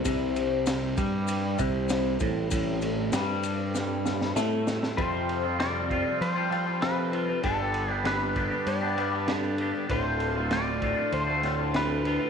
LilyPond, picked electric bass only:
\new Staff \with { instrumentName = "Picked electric bass" } { \clef bass \time 4/4 \key c \major \tempo 4 = 98 c,4. g,4 c,4 a,,8 | a,,4 g,2 a,4 | f,2 f2 | g,,2 g,2 |
d,,2 d,2 | }